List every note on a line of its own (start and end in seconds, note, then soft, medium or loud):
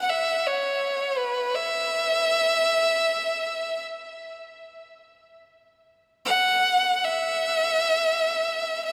0.02 0.10 F#5 medium
0.09 0.48 E5 medium
0.47 1.19 C#5 medium
1.18 1.56 B4 medium
1.54 3.84 E5 medium
6.25 7.05 F#5 medium
7.04 8.84 E5 medium
8.85 8.92 E5 medium